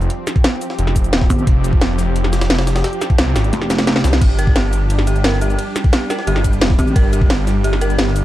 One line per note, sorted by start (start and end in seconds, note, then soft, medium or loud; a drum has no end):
0.00 4.17 F3 medium
0.00 1.44 C4 medium
0.00 8.25 G4 medium
0.00 closed hi-hat soft
0.00 shaker soft
0.10 closed hi-hat medium
0.27 snare medium
0.27 closed hi-hat medium
0.27 shaker medium
0.36 kick loud
0.36 closed hi-hat soft
0.44 snare loud
0.44 closed hi-hat medium
0.44 closed hi-hat loud
0.61 closed hi-hat medium
0.61 open hi-hat medium
0.61 shaker medium
0.70 snare medium
0.79 1.29 F1 loud
0.79 closed hi-hat medium
0.79 shaker soft
0.87 snare soft
0.96 kick medium
0.96 closed hi-hat medium
0.96 shaker medium
1.04 closed hi-hat soft
1.04 shaker soft
1.13 snare loud
1.13 closed hi-hat medium
1.13 closed hi-hat loud
1.21 kick loud
1.21 snare medium
1.30 1.46 G1 loud
1.30 kick medium
1.30 closed hi-hat medium
1.30 open hi-hat medium
1.30 shaker medium
1.39 shaker soft
1.47 2.83 F1 loud
1.47 8.25 D4 medium
1.47 kick loud
1.47 closed hi-hat medium
1.64 closed hi-hat medium
1.64 shaker medium
1.73 kick loud
1.81 snare loud
1.81 closed hi-hat loud
1.81 open hi-hat medium
1.99 snare soft
1.99 closed hi-hat medium
1.99 open hi-hat medium
1.99 shaker medium
2.16 closed hi-hat medium
2.16 shaker soft
2.24 snare soft
2.33 snare loud
2.33 closed hi-hat medium
2.33 open hi-hat medium
2.33 shaker medium
2.41 snare loud
2.41 closed hi-hat soft
2.41 open hi-hat medium
2.41 shaker soft
2.50 snare loud
2.50 closed hi-hat loud
2.50 open hi-hat medium
2.59 snare loud
2.59 open hi-hat medium
2.67 snare loud
2.67 open hi-hat medium
2.67 shaker medium
2.76 snare loud
2.76 open hi-hat medium
2.76 shaker soft
2.84 snare loud
2.84 closed hi-hat loud
2.84 open hi-hat medium
2.93 closed hi-hat soft
3.01 snare medium
3.01 closed hi-hat medium
3.01 shaker medium
3.10 kick loud
3.10 closed hi-hat soft
3.18 3.34 C2 loud
3.18 snare loud
3.18 closed hi-hat medium
3.18 closed hi-hat loud
3.36 3.52 G#1 medium
3.36 snare loud
3.36 snare medium
3.36 open hi-hat medium
3.36 shaker medium
3.44 closed hi-hat soft
3.53 4.03 F1 loud
3.53 snare soft
3.53 closed hi-hat medium
3.53 closed hi-hat loud
3.53 shaker soft
3.62 snare soft
3.70 snare soft
3.70 snare medium
3.70 closed hi-hat medium
3.70 shaker medium
3.78 snare loud
3.78 snare medium
3.78 closed hi-hat soft
3.78 open hi-hat medium
3.78 shaker soft
3.87 snare medium
3.87 closed hi-hat loud
3.96 snare soft
3.96 snare medium
3.96 closed hi-hat medium
4.04 4.20 C2 loud
4.04 snare loud
4.04 open hi-hat medium
4.04 shaker medium
4.13 snare medium
4.13 closed hi-hat soft
4.13 shaker soft
4.21 5.57 G1 loud
4.21 8.25 G3 medium
4.21 4.32 G4 medium
4.21 kick loud
4.21 closed hi-hat medium
4.21 closed hi-hat loud
4.21 crash medium
4.21 ride medium
4.39 4.45 A#4 loud
4.39 closed hi-hat medium
4.39 ride medium
4.39 shaker medium
4.47 kick loud
4.56 4.72 G4 medium
4.56 snare loud
4.56 closed hi-hat loud
4.56 open hi-hat medium
4.56 ride medium
4.73 closed hi-hat medium
4.73 open hi-hat medium
4.73 ride medium
4.73 shaker medium
4.90 closed hi-hat medium
4.90 closed hi-hat loud
4.90 ride medium
4.90 shaker soft
4.99 snare soft
5.07 5.18 G4 medium
5.07 closed hi-hat medium
5.07 ride medium
5.07 shaker medium
5.16 closed hi-hat soft
5.16 shaker soft
5.24 5.31 A#4 loud
5.24 snare loud
5.24 closed hi-hat loud
5.24 closed hi-hat medium
5.24 ride medium
5.33 snare soft
5.41 5.58 G4 medium
5.41 closed hi-hat medium
5.41 open hi-hat medium
5.41 ride medium
5.41 shaker medium
5.50 closed hi-hat soft
5.50 shaker soft
5.59 closed hi-hat loud
5.59 closed hi-hat medium
5.59 ride medium
5.76 snare medium
5.76 closed hi-hat medium
5.76 ride medium
5.76 shaker medium
5.84 kick loud
5.84 closed hi-hat soft
5.93 6.04 G4 medium
5.93 snare loud
5.93 closed hi-hat medium
5.93 closed hi-hat loud
5.93 ride medium
6.10 6.17 A#4 loud
6.10 snare medium
6.10 closed hi-hat medium
6.10 open hi-hat medium
6.10 ride medium
6.10 shaker medium
6.19 snare medium
6.27 6.77 G1 loud
6.27 6.43 G4 medium
6.27 closed hi-hat medium
6.27 closed hi-hat loud
6.27 ride medium
6.27 shaker soft
6.36 snare soft
6.44 kick medium
6.44 closed hi-hat medium
6.44 ride medium
6.44 shaker medium
6.53 closed hi-hat soft
6.53 shaker soft
6.61 snare loud
6.61 closed hi-hat medium
6.61 closed hi-hat loud
6.61 ride medium
6.70 kick loud
6.70 snare medium
6.79 6.94 G#1 loud
6.79 6.89 G4 medium
6.79 kick medium
6.79 closed hi-hat medium
6.79 open hi-hat medium
6.79 ride soft
6.79 shaker medium
6.87 shaker soft
6.96 8.25 G1 loud
6.96 7.02 A#4 loud
6.96 kick loud
6.96 closed hi-hat medium
6.96 ride medium
7.13 7.29 G4 medium
7.13 closed hi-hat medium
7.13 ride medium
7.13 shaker medium
7.21 kick loud
7.30 snare loud
7.30 closed hi-hat loud
7.30 open hi-hat medium
7.30 ride medium
7.47 snare soft
7.47 closed hi-hat medium
7.47 open hi-hat medium
7.47 ride medium
7.47 shaker medium
7.64 7.75 G4 medium
7.64 closed hi-hat medium
7.64 ride medium
7.64 shaker soft
7.73 snare soft
7.81 7.88 A#4 loud
7.81 closed hi-hat medium
7.81 ride medium
7.81 shaker medium
7.90 closed hi-hat soft
7.90 shaker soft
7.99 8.15 G4 medium
7.99 snare loud
7.99 closed hi-hat medium
7.99 ride medium
8.07 snare soft
8.16 closed hi-hat medium
8.16 open hi-hat medium
8.16 ride medium
8.16 shaker medium